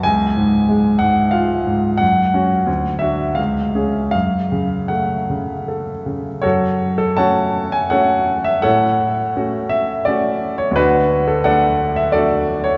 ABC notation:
X:1
M:3/4
L:1/16
Q:1/4=85
K:F#m
V:1 name="Grand piano"
g6 f2 ^e4 | f6 e2 ^e4 | ^e4 f6 z2 | [FAc]3 A [cfa]3 g [Acf]3 e |
[Acf]6 e2 d3 c | [DFB]3 A [Adf]3 e [FAd]3 c |]
V:2 name="Grand piano"
C,,2 G,,2 G,2 G,,2 ^E2 G,,2 | F,,2 [CF]2 D,,2 [DF]2 C,,2 [CG]2 | F,,2 C,2 A,2 C,2 A2 C,2 | F,,4 [A,CF]4 [A,CF]4 |
A,,4 [A,CF]4 [A,CF]4 | D,,4 [A,D]4 [A,D]4 |]